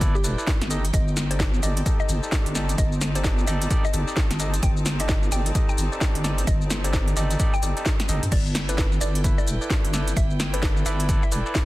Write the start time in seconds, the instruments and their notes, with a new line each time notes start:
Already playing: wobble bass G1, string machine E4 A4 B4 D6, string section E4 G5
0.01 tine electric piano E4 A4 B4 D5, kick, closed hi-hat, shaker
0.15 synth pluck G4, shaker
0.24 wobble bass E1, tine electric piano E4 A4 B4 D5, open hi-hat, shaker
0.38 tine electric piano E4 A4 B4 D5, shaker
0.47 kick, snare, shaker
0.61 wobble bass G1, snare, closed hi-hat, shaker
0.70 string machine D#4 G4 A4, tine electric piano D#4 G4 A4 D#5, string section D#4, open hi-hat, shaker
0.85 string section C4, closed hi-hat, shaker
0.93 wobble bass G1, synth pluck D#5, kick, closed hi-hat, shaker
1.08 shaker
1.17 snare, open hi-hat, shaker
1.31 tine electric piano D#4 G4 A4 D5, synth pluck C5, closed hi-hat, shaker
1.39 string section A5, kick, snare, shaker
1.54 shaker
1.63 wobble bass G1, tine electric piano D#4 G4 A4 D5, synth pluck D#5, open hi-hat, shaker
1.77 closed hi-hat, shaker
1.86 tine electric piano D#4 G4 A4 D#5, kick, closed hi-hat, shaker
2.00 synth pluck D#5, shaker
2.09 wobble bass G1, open hi-hat, shaker
2.23 tine electric piano D#4 G4 A4 D5, shaker
2.32 kick, snare, shaker
2.46 wobble bass G1, closed hi-hat, shaker
2.55 tine electric piano D#4 G4 A4 D5, snare, open hi-hat, shaker
2.69 closed hi-hat, shaker
2.78 wobble bass G1, synth pluck D#5, kick, closed hi-hat, shaker
2.92 shaker
3.01 snare, open hi-hat, shaker
3.15 tine electric piano D#4 G4 A4 D5, synth pluck C5, closed hi-hat, shaker
3.24 kick, snare, shaker
3.38 shaker
3.47 wobble bass G1, tine electric piano D#4 G4 A4 D5, synth pluck D#5, open hi-hat, shaker
3.62 closed hi-hat, shaker
3.70 tine electric piano D#4 G4 A4 D5, kick, closed hi-hat, shaker
3.85 synth pluck D#5, shaker
3.94 wobble bass G1, tine electric piano D#4 G4 A4 D5, open hi-hat, shaker
4.08 tine electric piano D#4 G4 A4 D5, shaker
4.17 kick, snare, shaker
4.31 wobble bass G1, snare, closed hi-hat, shaker
4.39 tine electric piano D#4 G4 A4 D#5, string machine B4, open hi-hat, shaker
4.54 closed hi-hat, shaker
4.63 wobble bass G1, synth pluck G5, kick, closed hi-hat, shaker
4.77 shaker
4.86 snare, open hi-hat, shaker
5.00 tine electric piano D#4 G4 A4 D5, synth pluck D#5, closed hi-hat, shaker
5.09 kick, snare, shaker
5.23 shaker
5.32 wobble bass G1, tine electric piano D#4 G4 A4 D5, synth pluck G5, open hi-hat, shaker
5.46 closed hi-hat, shaker
5.55 tine electric piano D#4 G4 A4 D#5, kick, closed hi-hat, shaker
5.69 synth pluck G5, shaker
5.78 wobble bass G1, open hi-hat, shaker
5.92 tine electric piano D#4 G4 A4 D5, shaker
6.01 kick, snare, shaker
6.15 wobble bass G1, closed hi-hat, shaker
6.24 tine electric piano D#4 G4 A4 D5, snare, open hi-hat, shaker
6.38 closed hi-hat, shaker
6.47 wobble bass G1, synth pluck D#5, kick, closed hi-hat, shaker
6.61 shaker
6.70 snare, open hi-hat, shaker
6.84 tine electric piano D#4 G4 A4 D5, synth pluck C5, closed hi-hat, shaker
6.93 kick, snare, shaker
7.08 closed hi-hat, shaker
7.16 wobble bass G1, tine electric piano D#4 G4 A4 D5, synth pluck D#5, open hi-hat, shaker
7.31 closed hi-hat, shaker
7.40 tine electric piano D#4 G4 A4 D5, kick, closed hi-hat, shaker
7.54 synth pluck G5, shaker
7.63 wobble bass G1, tine electric piano D#4 G4 A4 D5, open hi-hat, shaker
7.77 tine electric piano D#4 G4 A4 D5, closed hi-hat, shaker
7.86 kick, snare, shaker
8.00 snare, closed hi-hat, shaker
8.09 wobble bass G1, tine electric piano D#4 G4 A4 D#5, open hi-hat, shaker
8.23 wobble bass G2, closed hi-hat, shaker
8.31 wobble bass G1, string section E4, string machine E4 A4 B4 D5, synth pluck D5, kick, closed hi-hat, crash, shaker
8.46 shaker
8.51 string section B4 G5
8.55 snare, open hi-hat, shaker
8.69 tine electric piano E4 A4 B4 D5, synth pluck B4, closed hi-hat, shaker
8.78 kick, snare, shaker
8.92 shaker
9.01 wobble bass G1, tine electric piano E4 A4 B4 D5, synth pluck D5, open hi-hat, shaker
9.15 closed hi-hat, shaker
9.24 tine electric piano E4 A4 B4 E5, kick, closed hi-hat, shaker
9.38 synth pluck D5, shaker
9.47 wobble bass E1, open hi-hat, shaker
9.61 tine electric piano E4 A4 B4 D5, shaker
9.70 kick, snare, shaker
9.84 wobble bass G1, closed hi-hat, shaker
9.93 tine electric piano E4 A4 B4 D5, snare, open hi-hat, shaker
10.08 closed hi-hat, shaker
10.16 wobble bass G1, synth pluck E5, kick, closed hi-hat, shaker
10.31 shaker
10.40 snare, open hi-hat, shaker
10.53 tine electric piano E4 A4 B4 D5, synth pluck B4, closed hi-hat, shaker
10.63 kick, snare, shaker
10.77 shaker
10.86 wobble bass G1, tine electric piano E4 A4 B4 D5, synth pluck E5, open hi-hat, shaker
11.00 closed hi-hat, shaker
11.09 tine electric piano E4 A4 B4 D5, kick, closed hi-hat, shaker
11.23 synth pluck E5, shaker
11.32 wobble bass E1, tine electric piano E4 A4 B4 D5, open hi-hat, shaker
11.46 tine electric piano E4 A4 B4 D5, shaker
11.55 kick, snare, shaker